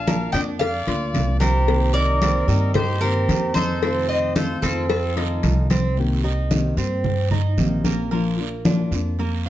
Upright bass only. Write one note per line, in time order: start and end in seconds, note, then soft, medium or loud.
0.00 0.27 A#1 medium
0.33 0.83 F2 medium
0.87 1.12 D2 medium
1.14 2.42 C2 medium
2.48 3.25 G2 loud
3.28 4.56 F2 medium
4.63 5.39 F2 loud
5.43 6.71 C2 medium
6.77 7.54 G2 medium
7.57 8.85 A#1 medium
8.91 9.49 F2 medium